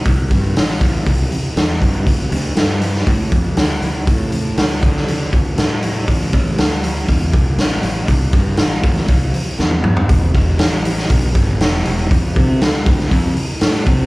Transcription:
<<
  \new Staff \with { instrumentName = "Fingered electric bass" } { \clef bass \time 4/4 \key d \major \tempo 4 = 120 c,8 g,8 a,,8 a,,8 c,8 r8 e,8 g,8 | d,8 d,8 g,4 a,8 f,8 d,8 d,8 | a,4 d,8 d4 d,8 a,4 | a,,8 a,,8 d,4 e,8 c,8 a,,8 a,,8 |
c,8 g,8 a,,8 a,,8 c,8 r8 e,8 g,8 | e,,8 e,,8 a,,4 b,,8 g,,8 e,,8 e,,8 | f,8 c8 d,8 d,8 f,8 r8 a,8 c8 | }
  \new DrumStaff \with { instrumentName = "Drums" } \drummode { \time 4/4 <hho bd>8 <hho bd>8 <hho sn>8 <hho bd>8 <hho bd>8 hho8 <hho sn>8 <hho bd>8 | <hho bd>8 hho8 <hho sn>8 hho16 sn16 <hho bd>8 <hho bd>8 <hho sn>8 hho8 | <hho bd>8 hho8 <hho sn>8 <hho bd>16 sn16 hho8 <hho bd>8 <hho sn>8 hho8 | <hho bd>8 <hho bd>8 <hho sn>8 hho8 <hho bd>8 <hho bd>8 <hho sn>8 hho8 |
<hho bd>8 <hho bd>8 <hho sn>8 <hho bd>16 sn16 <hho bd>8 hho8 sn16 tommh16 toml16 tomfh16 | <hho bd>8 <hho bd>8 <hho sn>8 hho16 sn16 <hho bd>8 <hho bd>8 <hho sn>8 hho8 | <hho bd>8 <hho bd>8 <hho sn>8 <hho bd>16 sn16 <hho bd>8 hho8 <hho sn>8 <hho bd>8 | }
>>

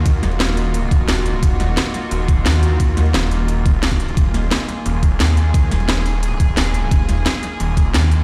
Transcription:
<<
  \new Staff \with { instrumentName = "String section" } { \time 4/4 \key ees \minor \tempo 4 = 175 << { ges'1~ | ges'1~ | ges'1 | aes'1~ |
aes'1~ | aes'1 | } \\ { <ees bes f'>1~ | <ees bes f'>1~ | <ees bes f'>1~ | <ees bes f'>1~ |
<ees bes f'>1~ | <ees bes f'>1 | } >> }
  \new Staff \with { instrumentName = "Detuned saw bass" } { \clef bass \time 4/4 \key ees \minor ees,8 ees,,2~ ees,,8 ees,,4 | ees,,4 r4 ees,,4 ees,4~ | ees,8 ees,8 ees,,4. ees,,4. | ees,,4 r4 ees,,4 ees,4~ |
ees,8 ees,,2~ ees,,8 ees,,4 | ees,,4 r4 ees,,4 ees,4 | }
  \new DrumStaff \with { instrumentName = "Drums" } \drummode { \time 4/4 <hh bd>8 <hh sn>16 hh16 <hh sn>8 <hh hho>8 hh8 <hh bd>8 <hh sn>8 hh8 | <hh bd>8 <hh sn>8 <hh sn>8 <hh sn>8 hh8 <hh bd>8 <hh sn>8 hh8 | <hh bd>8 <hh sn>16 hh16 <hh sn>8 <hh hho>8 hh8 <hh bd>8 <hh sn>16 <hh bd>16 hh16 hh16 | <hh bd>8 <hh sn>8 <hh sn>8 <hh sn>8 hh8 <hh bd>8 <hh sn>8 hh8 |
<hh bd>8 <hh sn>16 hh16 <hh sn>8 <hh hho>8 hh8 <hh bd>8 <hh sn>8 hh8 | <hh bd>8 <hh sn>8 <hh sn>8 <hh sn>8 hh8 <hh bd>8 <hh sn>8 hh8 | }
>>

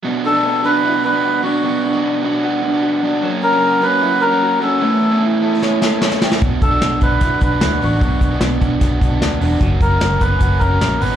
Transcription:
<<
  \new Staff \with { instrumentName = "Melodica" } { \time 4/4 \key b \minor \tempo 4 = 150 r8 a'4 b'4 b'4 fis'8~ | fis'4 r2. | r8 ais'4 b'4 ais'4 a'8~ | a'4 r2. |
r8 a'4 b'4 b'4 fis'8~ | fis'4 r2. | r8 ais'4 b'4 ais'4 b'8 | }
  \new Staff \with { instrumentName = "Clean electric guitar" } { \time 4/4 \key b \minor b,8 d'8 b8 d'8 e'16 fis'16 d'8 fis'8 d'8 | b,8 d'8 b8 d'8 fis'8 d'8 fis'8 d'8 | fis8 cis'4 cis'8 e'16 fis'16 cis'8 fis'8 cis'8 | a8 a'8 e'8 a'8 cis''8 a'8 cis''8 g'16 a'16 |
b,8 d'8 b8 d'8 e'16 fis'16 d'8 e'16 fis'16 d'8 | b,8 d'8 b8 d'8 fis'8 d'8 fis'8 d'8 | fis8 cis'4 b16 cis'16 fis'8 cis'8 fis'8 b16 cis'16 | }
  \new Staff \with { instrumentName = "Overdriven electric guitar" } { \time 4/4 \key b \minor <fis b d' fis'>8. <b, fis b d' fis'>8. <fis b d' fis'>8 <fis b d' fis'>8. <b d' fis'>8. <fis b d' fis'>8 | <fis b d' fis'>8. <b, fis b d' fis'>8. <fis b d' fis'>8 <fis b d' fis'>8. <b d' fis'>8. <fis b d' fis'>8 | <fis ais cis' fis'>8. <fis, cis fis ais cis' fis'>8. <fis ais cis' fis'>8 <fis ais cis' fis'>8. <fis ais cis' fis'>8. <fis ais cis' fis'>8 | <e b cis' e'>8. <a, e b cis' e'>8. <e b cis' e'>8 <e b cis' e'>8. <b cis' e'>8. <e b cis' e'>8 |
<fis b d' fis'>8. <b, fis b d' fis'>8. <fis b d' fis'>8 <fis b d' fis'>8. <b d' fis'>8. <fis b d' fis'>8 | <fis b d' fis'>8. <b, fis b d' fis'>8. <fis b d' fis'>8 <fis b d' fis'>8. <b d' fis'>8. <fis b d' fis'>8 | <fis ais cis' fis'>8. <fis, cis fis ais cis' fis'>8. <fis ais cis' fis'>8 <fis ais cis' fis'>8. <fis ais cis' fis'>8. <fis ais cis' fis'>8 | }
  \new Staff \with { instrumentName = "Fingered electric bass" } { \clef bass \time 4/4 \key b \minor r1 | r1 | r1 | r1 |
b,,8 b,,8 b,,8 b,,8 b,,8 b,,8 d,8 a,,8 | b,,8 b,,8 b,,8 b,,8 b,,8 b,,8 d,8 e,,8 | fis,,8 fis,,8 fis,,8 fis,,8 fis,,8 fis,,8 ais,,8 g,,8 | }
  \new DrumStaff \with { instrumentName = "Drums" } \drummode { \time 4/4 r4 r4 r4 r4 | r4 r4 r4 r4 | r4 r4 r4 r4 | r4 r4 sn8 sn8 sn16 sn16 sn16 sn16 |
<hh bd>8 <hh bd>8 <hh sn>8 <hh bd>8 <hh bd sn>8 <hh bd>8 <hh sn>8 hho8 | <hh bd>8 <hh bd>8 <hh sn>8 <hh bd>8 <hh bd sn>8 <hh bd>8 <hh sn>8 hho8 | <hh bd>8 <hh bd>8 <hh sn>8 <hh bd>8 <hh bd>8 <hh bd>8 <hh sn>8 hho8 | }
>>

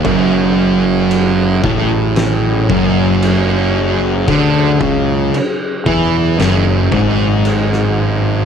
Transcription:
<<
  \new Staff \with { instrumentName = "Synth drone" } { \time 4/4 \key fis \dorian \tempo 4 = 57 <fis cis' gis'>1~ | <fis cis' gis'>1 | }
  \new Staff \with { instrumentName = "Distorted electric guitar" } { \clef bass \time 4/4 \key fis \dorian fis,4. a,4 fis,4. | d8 cis8 r8 e8 fis,8 gis,4. | }
  \new Staff \with { instrumentName = "Distorted electric guitar" } { \clef bass \time 4/4 \key fis \dorian fis,4. a,4 fis,4. | d8 cis8 r8 e8 fis,8 gis,4. | }
  \new Staff \with { instrumentName = "Distorted electric guitar" } { \clef bass \time 4/4 \key fis \dorian fis,4. a,4 fis,4. | d8 cis8 r8 e8 fis,8 gis,4. | }
  \new Staff \with { instrumentName = "Fingered electric bass" } { \clef bass \time 4/4 \key fis \dorian fis,,4. a,,4 fis,,4. | d,8 cis,8 r8 e,8 fis,,8 gis,,4. | }
  \new DrumStaff \with { instrumentName = "Drums" } \drummode { \time 4/4 <cymc bd>4 cymc8 bd8 <cymc sn>8 bd8 cymc4 | <cymc bd>8 bd8 cymc8 bd8 <cymc sn>8 bd8 cymc16 sn8. | }
>>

